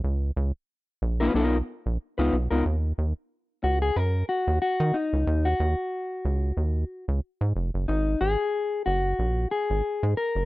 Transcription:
X:1
M:4/4
L:1/16
Q:"Swing 16ths" 1/4=92
K:Ebm
V:1 name="Clean electric guitar"
z6 z [CEFc] [CEFB] z4 [CEFc] z [CEFB] | z6 G A B2 G2 G2 E2- | E G8- G2 z4 z | E2 A4 G4 A4 B2 |]
V:2 name="Analog synth bass" clef=bass
D,,2 D,, z3 B,,,2 C,,2 z B,,, z D,, C,, D,, | E,,2 E,, z3 D,,2 G,,2 z E,, z E, z D,, | E,,2 E,, z3 D,,2 E,,2 z D,, z A,, F,,, G,,, | A,,,2 A,,, z3 G,,,2 B,,,2 z A,,, z A,, z G,,, |]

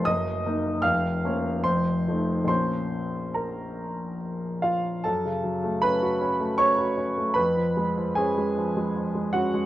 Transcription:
X:1
M:3/4
L:1/16
Q:1/4=76
K:Bbm
V:1 name="Grand piano"
[ee']4 [ff']4 [cc']4 | [cc']4 [Bb]4 z2 [Ff]2 | [K:F#m] [Aa]4 [Bb]4 [cc']4 | [Bb]4 [Gg]4 z2 [Ff]2 |]
V:2 name="Grand piano" clef=bass
[G,,,G,,]2 [B,E]2 [F,,,F,,]2 [F,B,D]2 [F,,,F,,]2 [F,=A,E]2 | [B,,,F,B,D]12 | [K:F#m] F,, C, F, A, C F C A, C F C A, | ^E,, ^E, G, E, C G, E, G, E, G, C G, |]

